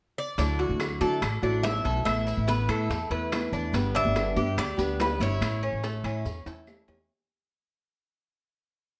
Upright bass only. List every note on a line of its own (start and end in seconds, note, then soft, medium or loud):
0.38 0.68 D2 medium
0.69 1.00 D2 medium
1.01 1.21 D3 medium
1.22 1.42 A1 medium
1.42 1.83 A1 medium
1.85 2.05 B1 medium
2.06 2.36 A1 medium
2.37 2.67 A1 medium
2.69 2.89 A2 medium
2.90 3.10 E2 medium
3.10 3.51 E2 medium
3.52 3.73 E2 medium
3.73 4.03 G1 medium
4.05 4.35 G1 medium
4.36 4.57 G2 loud
4.57 4.77 D2 medium
4.78 5.18 D2 medium
5.20 5.40 G1 loud
5.41 5.71 A1 medium
5.73 6.03 A1 medium
6.04 6.24 A2 loud
6.25 6.45 E2 medium
6.46 6.86 E2 medium
6.88 7.08 E2 medium